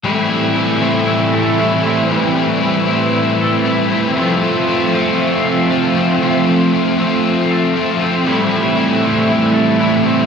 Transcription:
0.04 overdriven electric guitar A2 E3 A3 C4 E4, clean electric guitar G3, analog synth pad G3 C4 A4 E5
0.29 overdriven electric guitar A3 C4 E4
0.54 overdriven electric guitar E3 A3 C4 E4
0.80 overdriven electric guitar A3 C4 E4
1.08 clean electric guitar E4
1.34 clean electric guitar A4
1.58 overdriven electric guitar E3 A3 C4 E4
1.84 overdriven electric guitar A3 C4 E4
2.09 overdriven electric guitar A2 E3 A3 C4 E4, clean electric guitar G3, analog synth pad B4
2.35 overdriven electric guitar A3 C4 E4
2.61 overdriven electric guitar E3 A3 C4 E4
2.87 overdriven electric guitar A3 C4 E4
3.16 clean electric guitar E4
3.41 clean electric guitar A4
3.64 overdriven electric guitar E3 A3 C4 E4
3.90 overdriven electric guitar A3 C4 E4
4.15 overdriven electric guitar F2 C3 F3 A3 C4 F4, analog synth pad F3 A4
4.42 overdriven electric guitar F3 A3 C4 F4
4.67 overdriven electric guitar F3 A3 C4 F4
4.94 overdriven electric guitar F3 A3 C4 F4
5.45 clean electric guitar A4
5.70 overdriven electric guitar F3 A3 C4 F4
5.96 overdriven electric guitar F3 A3 C4 F4
6.22 overdriven electric guitar F2 C3 F3 A3 C4 F4
6.47 overdriven electric guitar F3 A3 C4 F4
6.73 overdriven electric guitar F3 A3 C4 F4
6.99 overdriven electric guitar F3 A3 C4 F4
7.51 clean electric guitar A4
7.76 overdriven electric guitar F3 A3 C4 F4
8.00 overdriven electric guitar F3 A3 C4 F4
8.26 overdriven electric guitar A2 E3 A3 C4 E4, clean electric guitar G3, analog synth pad G3
8.51 overdriven electric guitar A3 C4 E4
8.77 overdriven electric guitar E3 A3 C4 E4
9.02 overdriven electric guitar A3 C4 E4
9.29 clean electric guitar E4
9.54 clean electric guitar A4
9.79 overdriven electric guitar E3 A3 C4 E4
10.04 overdriven electric guitar A3 C4 E4

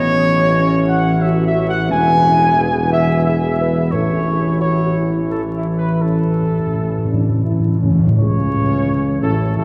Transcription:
Already playing: tuba A1, trombone section E3 C#4, french horn section B3, trumpet section C#5
0.55 french horn section C#4
0.89 trumpet section F#5
1.22 french horn section F#4, trumpet section E5
1.47 trumpet section E5
1.69 trumpet section F#5
1.90 tuba E1, trombone section B3, french horn section E4, trumpet section G#5
2.58 french horn section G#4
2.91 french horn section F#4, trumpet section E5
3.25 french horn section G#4, trumpet section E5
3.60 french horn section B4
3.91 tuba A1, timpani A2, trombone section E3 E4, french horn section A4, trumpet section C#5
4.27 french horn section G#4
4.60 french horn section F#4, trumpet section C#5
4.96 french horn section E4
5.31 trumpet section A4
5.56 trumpet section E4
5.78 trumpet section B4
6.02 timpani A2, french horn section C#4, trumpet section A4
6.11 timpani A2
6.18 timpani A2
6.26 timpani A2
6.35 timpani A2
6.42 timpani A2
6.51 timpani A2
6.59 timpani A2
6.66 timpani A2
6.74 timpani A2, french horn section C#4
6.82 timpani A2
6.89 timpani A2
6.97 timpani A2
7.05 timpani A2
7.10 timpani A2, french horn section D4
7.20 timpani A2
7.28 timpani A2
7.36 timpani A2
7.44 timpani A2, french horn section E4
7.51 timpani A2
7.59 timpani A2
7.68 timpani A2
7.75 timpani A2
7.81 timpani A2, french horn section C#4
7.91 timpani A2
7.99 timpani A2
8.07 timpani A2
8.17 tuba C#2, timpani A2, trombone section C#3, french horn section C#4, trumpet section C#5
9.20 tuba A1, trombone section A2, french horn section A3, trumpet section A4
9.56 tuba A1, trombone section A2, french horn section A3, trumpet section A4

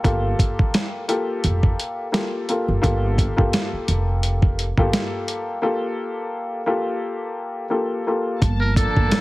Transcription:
0.04 upright bass G1, grand piano A#3 F4 G4 A4, kick, closed hi-hat
0.39 kick, closed hi-hat
0.59 kick
0.74 snare, closed hi-hat
1.08 grand piano A#3 F4 G4 A4, closed hi-hat
1.44 upright bass F1, closed hi-hat
1.63 kick
1.80 closed hi-hat
2.12 grand piano A#3 F4 G4 A4, snare, closed hi-hat
2.49 grand piano A#3 F4 G4 A4, closed hi-hat
2.68 upright bass F#1
2.82 upright bass G1, grand piano A#3 F4 G4 A4, kick, closed hi-hat
3.18 kick, closed hi-hat
3.36 upright bass G1, grand piano A#3 F4 G4 A4, kick
3.53 snare, closed hi-hat
3.73 muted upright bass stroke
3.88 upright bass F1, closed hi-hat
4.23 closed hi-hat
4.42 kick
4.59 closed hi-hat
4.78 upright bass G1, grand piano A#3 F4 G4 A4, kick
4.93 snare, closed hi-hat
5.28 closed hi-hat
5.62 grand piano A#3 F4 G4 A4
6.66 grand piano A#3 F4 G4 A4
7.70 grand piano A#3 F4 G4 A4
8.07 grand piano A#3 F4 G4 A4
8.41 upright bass G1, string section F3 A#3 A5, kick, closed hi-hat
8.60 muted trumpet A#4
8.76 trumpet section A#3 D4, muted trumpet A4, kick, closed hi-hat
8.96 upright bass G1, kick
9.11 snare, closed hi-hat

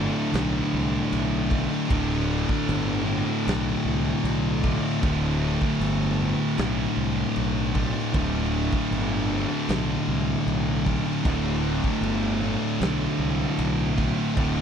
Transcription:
Already playing: distorted electric guitar D2 A2 D3 A3 F4
0.32 fingered electric bass B1, distorted electric guitar D2 A2 D3, snare, crash
0.73 fingered electric bass C2
1.12 fingered electric bass B1, crash
1.50 distorted electric guitar D2 A2 D3 A3 F4, kick
1.90 fingered electric bass D1, distorted electric guitar D2 A2 D3 A3 F4, kick, crash
2.13 snare
2.49 kick
2.69 fingered electric bass G1, crash
3.05 distorted electric guitar D2 A2 D3
3.46 fingered electric bass B1, distorted electric guitar D2 A2 D3, snare, crash
3.84 fingered electric bass C2
4.23 fingered electric bass B1, crash
4.63 distorted electric guitar D2 A2 D3 A3 F4, kick
5.02 fingered electric bass D1, distorted electric guitar D2 A2 D3 A3 F4, kick, crash
5.62 kick
5.79 fingered electric bass G1, crash
6.19 distorted electric guitar D2 A2 D3
6.58 fingered electric bass B1, distorted electric guitar D2 A2 D3, snare, crash
6.96 fingered electric bass C2
7.36 fingered electric bass B1, crash
7.74 distorted electric guitar D2 A2 D3 A3 F4, kick
8.14 fingered electric bass D1, distorted electric guitar D2 A2 D3 A3 F4, kick, crash
8.73 kick
8.91 fingered electric bass G1, crash
9.28 distorted electric guitar D2 A2 D3
9.69 fingered electric bass B1, distorted electric guitar D2 A2, snare, crash
9.73 distorted electric guitar D3
10.07 fingered electric bass C2
10.46 fingered electric bass B1, crash
10.86 distorted electric guitar D2 A2 D3 A3 F4, kick
11.25 fingered electric bass D1, distorted electric guitar D2 A2 D3 A3 F4, kick, crash
11.84 kick
12.00 fingered electric bass G1, crash
12.41 distorted electric guitar D2 A2 D3
12.80 fingered electric bass B1, distorted electric guitar D2 A2 D3, snare, crash
13.18 fingered electric bass C2
13.58 fingered electric bass B1, crash
13.97 distorted electric guitar D2 A2 D3 A3 F4, kick
14.36 fingered electric bass D1, distorted electric guitar D2 A2 D3 A3 F4, kick, crash
14.58 snare

